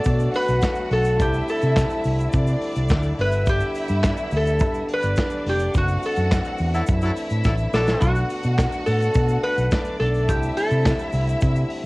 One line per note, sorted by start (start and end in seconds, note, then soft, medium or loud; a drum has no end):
0.00 5.71 D3 medium
0.00 1.18 F#3 medium
0.00 3.15 A3 medium
0.00 1.18 B3 medium
0.00 0.31 D4 medium
0.00 1.17 F#4 medium
0.00 0.35 A4 medium
0.00 0.31 D5 loud
0.00 shaker medium
0.05 0.27 B2 loud
0.05 kick loud
0.05 closed hi-hat medium
0.19 shaker medium
0.34 1.18 F#4 medium
0.34 0.92 B4 loud
0.34 1.18 F#5 medium
0.34 open hi-hat medium
0.48 0.59 B1 medium
0.48 closed hi-hat soft
0.48 shaker medium
0.61 kick loud
0.61 snare loud
0.61 clap medium
0.61 closed hi-hat medium
0.61 shaker medium
0.75 shaker soft
0.91 1.20 B1 medium
0.91 1.21 A4 loud
0.91 open hi-hat medium
1.05 closed hi-hat soft
1.05 shaker medium
1.19 1.40 C2 loud
1.19 3.17 G3 medium
1.19 3.17 C4 medium
1.19 3.16 E4 medium
1.19 2.31 E4 medium
1.19 1.50 G4 medium
1.19 2.31 E5 medium
1.19 kick loud
1.19 closed hi-hat medium
1.19 shaker medium
1.33 shaker soft
1.48 2.02 A4 medium
1.48 open hi-hat medium
1.48 shaker medium
1.61 1.83 C3 medium
1.61 closed hi-hat soft
1.61 shaker medium
1.76 kick loud
1.76 snare loud
1.76 clap loud
1.76 closed hi-hat medium
1.76 shaker medium
1.90 shaker soft
2.04 2.26 C2 medium
2.04 open hi-hat medium
2.04 shaker medium
2.19 closed hi-hat soft
2.19 shaker medium
2.32 2.54 C3 loud
2.32 3.17 D4 medium
2.32 3.17 D5 medium
2.32 kick loud
2.32 closed hi-hat medium
2.32 shaker medium
2.47 shaker medium
2.62 open hi-hat medium
2.76 2.91 C2 medium
2.76 closed hi-hat medium
2.76 shaker medium
2.89 3.11 D2 medium
2.89 kick loud
2.89 snare loud
2.89 clap medium
2.89 closed hi-hat medium
2.89 shaker medium
3.03 shaker soft
3.18 3.61 G1 medium
3.18 5.72 G3 medium
3.18 5.72 B3 medium
3.18 10.24 D4 medium
3.18 4.86 E4 medium
3.18 3.49 B4 loud
3.18 4.86 E5 medium
3.18 open hi-hat medium
3.32 closed hi-hat soft
3.32 shaker medium
3.46 4.36 G4 loud
3.46 kick loud
3.46 closed hi-hat medium
3.46 shaker medium
3.61 shaker medium
3.75 open hi-hat medium
3.75 shaker medium
3.88 4.11 G2 loud
3.88 closed hi-hat medium
3.88 shaker medium
4.04 kick loud
4.04 snare loud
4.04 clap medium
4.04 closed hi-hat medium
4.04 shaker medium
4.17 shaker medium
4.31 4.61 D2 loud
4.31 open hi-hat medium
4.31 shaker soft
4.37 4.87 A4 medium
4.46 closed hi-hat soft
4.46 shaker medium
4.59 4.82 G2 loud
4.59 kick loud
4.59 closed hi-hat medium
4.59 shaker medium
4.74 shaker medium
4.89 5.73 D4 medium
4.89 5.73 D5 medium
4.89 open hi-hat medium
4.94 5.50 B4 loud
5.03 5.14 G1 medium
5.03 closed hi-hat medium
5.03 shaker medium
5.16 kick loud
5.16 snare loud
5.16 clap medium
5.16 closed hi-hat medium
5.16 shaker medium
5.30 shaker soft
5.46 5.67 F1 medium
5.46 5.77 G4 medium
5.46 snare soft
5.46 open hi-hat medium
5.59 closed hi-hat soft
5.59 shaker medium
5.74 5.95 F#1 loud
5.74 7.99 E3 medium
5.74 7.99 A3 medium
5.74 7.99 C4 medium
5.74 6.86 F#4 medium
5.74 6.05 F#4 medium
5.74 6.85 F#5 medium
5.74 kick loud
5.74 closed hi-hat medium
5.74 shaker medium
5.88 shaker medium
6.02 6.57 A4 medium
6.02 open hi-hat medium
6.02 shaker medium
6.16 6.38 F#2 medium
6.16 closed hi-hat medium
6.16 shaker medium
6.31 kick loud
6.31 snare loud
6.31 clap medium
6.31 closed hi-hat medium
6.31 shaker medium
6.44 shaker medium
6.58 6.80 E2 loud
6.58 open hi-hat medium
6.58 shaker soft
6.74 6.83 F#3 loud
6.74 6.83 E4 medium
6.74 6.83 A4 loud
6.74 closed hi-hat medium
6.74 shaker medium
6.86 7.09 F#2 loud
6.86 8.00 E4 medium
6.86 8.00 E5 medium
6.86 kick loud
6.86 closed hi-hat medium
6.86 shaker loud
7.01 7.12 F#3 loud
7.01 7.11 E4 loud
7.01 7.11 A4 loud
7.01 shaker medium
7.16 open hi-hat medium
7.16 shaker medium
7.30 7.41 A2 medium
7.30 closed hi-hat medium
7.30 shaker soft
7.44 7.65 A1 medium
7.44 7.54 F#3 medium
7.44 7.54 E4 medium
7.44 7.54 A4 medium
7.44 kick loud
7.44 snare medium
7.44 shaker medium
7.58 shaker soft
7.73 7.94 A#1 medium
7.73 8.10 F#3 loud
7.73 8.10 D4 medium
7.73 8.10 A4 loud
7.73 8.03 A4 medium
7.73 snare medium
7.73 shaker medium
7.87 snare loud
7.87 shaker medium
8.00 8.22 B1 loud
8.00 11.86 D3 medium
8.00 11.86 A3 medium
8.00 10.26 B3 medium
8.00 8.89 F#4 medium
8.00 9.69 F#4 medium
8.00 9.69 F#5 loud
8.00 kick loud
8.00 closed hi-hat medium
8.00 shaker medium
8.15 shaker medium
8.30 open hi-hat medium
8.30 shaker medium
8.43 8.65 B2 loud
8.43 closed hi-hat medium
8.43 shaker medium
8.58 kick loud
8.58 snare loud
8.58 clap medium
8.58 closed hi-hat medium
8.58 shaker medium
8.72 shaker soft
8.86 9.08 A2 loud
8.86 9.43 A4 medium
8.86 open hi-hat medium
8.86 shaker medium
9.00 closed hi-hat soft
9.00 shaker medium
9.14 9.36 B2 loud
9.14 kick loud
9.14 closed hi-hat medium
9.14 shaker medium
9.28 shaker medium
9.43 9.99 B4 loud
9.43 open hi-hat medium
9.58 9.68 B1 medium
9.58 closed hi-hat medium
9.58 shaker soft
9.71 10.28 D4 medium
9.71 10.28 D5 medium
9.71 kick loud
9.71 snare loud
9.71 clap medium
9.71 closed hi-hat medium
9.71 shaker medium
9.85 shaker soft
10.00 10.29 B1 medium
10.00 10.29 A4 loud
10.00 snare soft
10.00 open hi-hat medium
10.14 closed hi-hat soft
10.14 shaker medium
10.29 10.49 C2 loud
10.29 11.86 G3 medium
10.29 11.86 C4 medium
10.29 11.86 E4 medium
10.29 10.58 G4 medium
10.29 11.86 E5 loud
10.29 kick loud
10.29 closed hi-hat medium
10.29 shaker medium
10.43 shaker medium
10.57 11.09 A4 loud
10.57 open hi-hat medium
10.57 shaker medium
10.71 10.92 C3 loud
10.71 closed hi-hat medium
10.71 shaker soft
10.86 kick loud
10.86 snare loud
10.86 clap medium
10.86 closed hi-hat medium
10.86 shaker medium
10.99 shaker medium
11.12 11.34 C2 loud
11.12 open hi-hat medium
11.12 shaker medium
11.27 closed hi-hat soft
11.27 shaker medium
11.41 11.63 C3 loud
11.41 kick loud
11.41 closed hi-hat medium
11.41 shaker loud
11.56 shaker medium
11.70 open hi-hat medium